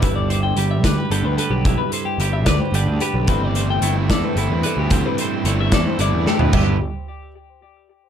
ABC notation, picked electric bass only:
X:1
M:6/8
L:1/16
Q:3/8=74
K:Ador
V:1 name="Picked electric bass" clef=bass
G,,,4 G,,,2 D,, z G,,, D,, z B,,,- | B,,, z3 G,,,2 D,, z G,,, D,, z B,,, | G,,,4 G,,,2 E,, z G,,, E,, z D,,- | D,, z3 G,,,2 E,, z G,,, E,, z D,, |
G,,,2 z8 z2 |]